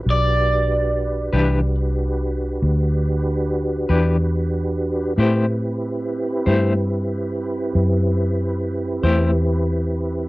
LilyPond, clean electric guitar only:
\new Staff \with { instrumentName = "Clean electric guitar" } { \time 12/8 \key e \minor \tempo 4. = 47 r4. <e d' g' b'>8 r2 r8 <e d' g' b'>8 r4 | <a e' g' c''>8 r4 <a e' g' c''>8 r2 r8 <a e' g' c''>8 r4 | }